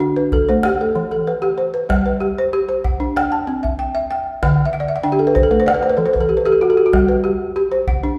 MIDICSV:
0, 0, Header, 1, 3, 480
1, 0, Start_track
1, 0, Key_signature, 1, "major"
1, 0, Tempo, 630252
1, 1446, Time_signature, 4, 2, 24, 8
1, 6234, End_track
2, 0, Start_track
2, 0, Title_t, "Balafon"
2, 0, Program_c, 0, 12
2, 0, Note_on_c, 0, 66, 57
2, 2, Note_on_c, 0, 62, 75
2, 125, Note_on_c, 0, 71, 63
2, 241, Note_off_c, 0, 62, 0
2, 242, Note_off_c, 0, 66, 0
2, 251, Note_on_c, 0, 69, 68
2, 370, Note_on_c, 0, 72, 62
2, 377, Note_on_c, 0, 57, 75
2, 483, Note_off_c, 0, 71, 0
2, 488, Note_off_c, 0, 57, 0
2, 496, Note_on_c, 0, 67, 67
2, 607, Note_off_c, 0, 72, 0
2, 609, Note_off_c, 0, 69, 0
2, 617, Note_on_c, 0, 69, 61
2, 726, Note_on_c, 0, 52, 73
2, 842, Note_off_c, 0, 69, 0
2, 851, Note_on_c, 0, 69, 57
2, 852, Note_off_c, 0, 67, 0
2, 965, Note_off_c, 0, 52, 0
2, 970, Note_on_c, 0, 71, 60
2, 1081, Note_on_c, 0, 67, 73
2, 1201, Note_on_c, 0, 72, 62
2, 1208, Note_off_c, 0, 69, 0
2, 1314, Note_off_c, 0, 71, 0
2, 1323, Note_on_c, 0, 71, 61
2, 1325, Note_off_c, 0, 67, 0
2, 1440, Note_on_c, 0, 55, 72
2, 1557, Note_off_c, 0, 71, 0
2, 1566, Note_off_c, 0, 72, 0
2, 1566, Note_on_c, 0, 71, 60
2, 1679, Note_on_c, 0, 67, 62
2, 1684, Note_off_c, 0, 55, 0
2, 1816, Note_on_c, 0, 72, 65
2, 1919, Note_off_c, 0, 67, 0
2, 1927, Note_off_c, 0, 71, 0
2, 1928, Note_on_c, 0, 67, 77
2, 2037, Note_off_c, 0, 72, 0
2, 2046, Note_on_c, 0, 72, 62
2, 2167, Note_on_c, 0, 78, 69
2, 2169, Note_off_c, 0, 67, 0
2, 2285, Note_on_c, 0, 62, 78
2, 2406, Note_off_c, 0, 62, 0
2, 2407, Note_off_c, 0, 72, 0
2, 2410, Note_on_c, 0, 79, 69
2, 2527, Note_on_c, 0, 81, 66
2, 2530, Note_off_c, 0, 78, 0
2, 2646, Note_on_c, 0, 60, 75
2, 2765, Note_on_c, 0, 76, 62
2, 2772, Note_off_c, 0, 79, 0
2, 2886, Note_on_c, 0, 79, 65
2, 2887, Note_off_c, 0, 60, 0
2, 2887, Note_off_c, 0, 81, 0
2, 2997, Note_off_c, 0, 76, 0
2, 3006, Note_on_c, 0, 76, 74
2, 3118, Note_off_c, 0, 79, 0
2, 3127, Note_on_c, 0, 79, 66
2, 3248, Note_off_c, 0, 76, 0
2, 3371, Note_on_c, 0, 50, 76
2, 3489, Note_off_c, 0, 79, 0
2, 3545, Note_on_c, 0, 76, 69
2, 3602, Note_on_c, 0, 78, 68
2, 3610, Note_off_c, 0, 50, 0
2, 3656, Note_on_c, 0, 74, 69
2, 3658, Note_off_c, 0, 76, 0
2, 3718, Note_off_c, 0, 78, 0
2, 3720, Note_on_c, 0, 76, 66
2, 3774, Note_off_c, 0, 74, 0
2, 3775, Note_on_c, 0, 78, 65
2, 3834, Note_off_c, 0, 76, 0
2, 3835, Note_on_c, 0, 62, 83
2, 3835, Note_on_c, 0, 79, 73
2, 3893, Note_off_c, 0, 78, 0
2, 3901, Note_on_c, 0, 67, 74
2, 3954, Note_off_c, 0, 79, 0
2, 3954, Note_on_c, 0, 69, 69
2, 4014, Note_on_c, 0, 71, 71
2, 4016, Note_off_c, 0, 67, 0
2, 4071, Note_off_c, 0, 69, 0
2, 4075, Note_on_c, 0, 72, 73
2, 4081, Note_off_c, 0, 62, 0
2, 4132, Note_off_c, 0, 71, 0
2, 4137, Note_on_c, 0, 69, 76
2, 4193, Note_off_c, 0, 72, 0
2, 4195, Note_on_c, 0, 57, 72
2, 4197, Note_on_c, 0, 71, 70
2, 4253, Note_off_c, 0, 69, 0
2, 4263, Note_on_c, 0, 72, 72
2, 4312, Note_off_c, 0, 71, 0
2, 4314, Note_on_c, 0, 74, 68
2, 4319, Note_off_c, 0, 57, 0
2, 4376, Note_off_c, 0, 72, 0
2, 4376, Note_on_c, 0, 71, 70
2, 4432, Note_off_c, 0, 74, 0
2, 4437, Note_on_c, 0, 72, 72
2, 4480, Note_off_c, 0, 71, 0
2, 4489, Note_on_c, 0, 71, 73
2, 4546, Note_on_c, 0, 69, 65
2, 4550, Note_on_c, 0, 52, 76
2, 4551, Note_off_c, 0, 72, 0
2, 4608, Note_off_c, 0, 71, 0
2, 4612, Note_on_c, 0, 72, 69
2, 4668, Note_off_c, 0, 69, 0
2, 4671, Note_on_c, 0, 71, 69
2, 4726, Note_on_c, 0, 69, 69
2, 4730, Note_off_c, 0, 72, 0
2, 4788, Note_off_c, 0, 71, 0
2, 4790, Note_on_c, 0, 67, 65
2, 4797, Note_off_c, 0, 52, 0
2, 4846, Note_off_c, 0, 69, 0
2, 4851, Note_on_c, 0, 71, 69
2, 4907, Note_off_c, 0, 67, 0
2, 4916, Note_on_c, 0, 67, 74
2, 4922, Note_on_c, 0, 69, 72
2, 4958, Note_off_c, 0, 67, 0
2, 4967, Note_on_c, 0, 67, 69
2, 4969, Note_off_c, 0, 71, 0
2, 5033, Note_off_c, 0, 69, 0
2, 5037, Note_on_c, 0, 66, 73
2, 5086, Note_off_c, 0, 67, 0
2, 5102, Note_on_c, 0, 69, 71
2, 5152, Note_off_c, 0, 66, 0
2, 5158, Note_on_c, 0, 67, 69
2, 5214, Note_off_c, 0, 69, 0
2, 5225, Note_on_c, 0, 66, 71
2, 5270, Note_off_c, 0, 67, 0
2, 5277, Note_on_c, 0, 55, 79
2, 5335, Note_off_c, 0, 66, 0
2, 5396, Note_on_c, 0, 71, 66
2, 5512, Note_on_c, 0, 67, 66
2, 5518, Note_off_c, 0, 55, 0
2, 5749, Note_off_c, 0, 67, 0
2, 5755, Note_off_c, 0, 71, 0
2, 5758, Note_on_c, 0, 67, 78
2, 5876, Note_on_c, 0, 72, 66
2, 5997, Note_off_c, 0, 67, 0
2, 5999, Note_on_c, 0, 78, 68
2, 6119, Note_on_c, 0, 62, 80
2, 6233, Note_off_c, 0, 72, 0
2, 6234, Note_off_c, 0, 62, 0
2, 6234, Note_off_c, 0, 78, 0
2, 6234, End_track
3, 0, Start_track
3, 0, Title_t, "Calabash"
3, 245, Note_on_c, 9, 36, 62
3, 321, Note_off_c, 9, 36, 0
3, 482, Note_on_c, 9, 38, 60
3, 558, Note_off_c, 9, 38, 0
3, 728, Note_on_c, 9, 38, 20
3, 804, Note_off_c, 9, 38, 0
3, 848, Note_on_c, 9, 38, 19
3, 924, Note_off_c, 9, 38, 0
3, 971, Note_on_c, 9, 38, 19
3, 1048, Note_off_c, 9, 38, 0
3, 1093, Note_on_c, 9, 38, 19
3, 1169, Note_off_c, 9, 38, 0
3, 1447, Note_on_c, 9, 36, 59
3, 1447, Note_on_c, 9, 38, 56
3, 1523, Note_off_c, 9, 36, 0
3, 1523, Note_off_c, 9, 38, 0
3, 1687, Note_on_c, 9, 38, 20
3, 1763, Note_off_c, 9, 38, 0
3, 2168, Note_on_c, 9, 36, 58
3, 2244, Note_off_c, 9, 36, 0
3, 2414, Note_on_c, 9, 38, 58
3, 2490, Note_off_c, 9, 38, 0
3, 2776, Note_on_c, 9, 36, 48
3, 2852, Note_off_c, 9, 36, 0
3, 3139, Note_on_c, 9, 38, 19
3, 3216, Note_off_c, 9, 38, 0
3, 3372, Note_on_c, 9, 36, 59
3, 3372, Note_on_c, 9, 38, 56
3, 3448, Note_off_c, 9, 36, 0
3, 3448, Note_off_c, 9, 38, 0
3, 3614, Note_on_c, 9, 38, 18
3, 3690, Note_off_c, 9, 38, 0
3, 4083, Note_on_c, 9, 36, 61
3, 4159, Note_off_c, 9, 36, 0
3, 4325, Note_on_c, 9, 38, 59
3, 4401, Note_off_c, 9, 38, 0
3, 4689, Note_on_c, 9, 36, 46
3, 4765, Note_off_c, 9, 36, 0
3, 5045, Note_on_c, 9, 38, 18
3, 5122, Note_off_c, 9, 38, 0
3, 5281, Note_on_c, 9, 36, 59
3, 5281, Note_on_c, 9, 38, 52
3, 5357, Note_off_c, 9, 36, 0
3, 5357, Note_off_c, 9, 38, 0
3, 5521, Note_on_c, 9, 38, 19
3, 5597, Note_off_c, 9, 38, 0
3, 5997, Note_on_c, 9, 36, 59
3, 6074, Note_off_c, 9, 36, 0
3, 6234, End_track
0, 0, End_of_file